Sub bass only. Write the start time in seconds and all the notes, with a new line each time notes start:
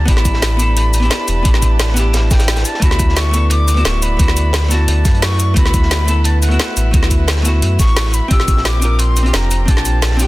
0.08 A1
1.28 E1
1.45 A1
2.31 A1
2.82 D2
3.85 D1
4.19 D2
4.88 D2
5.05 F#2
5.57 D2
6.77 A1
6.94 D2
7.62 F#2
7.79 A1
8.31 A#1
9.34 F1
9.68 A#1